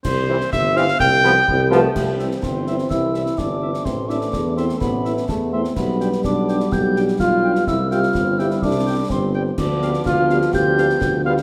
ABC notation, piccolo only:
X:1
M:2/4
L:1/8
Q:1/4=126
K:C
V:1 name="Piccolo"
c'2 e' f' | g'3 a | g2 c'2 | e'2 d'2 |
c' d'2 c' | b2 a c' | b2 d'2 | g'2 f'2 |
e' f'2 e' | d'2 c' z | d'2 f'2 | g'3 f' |]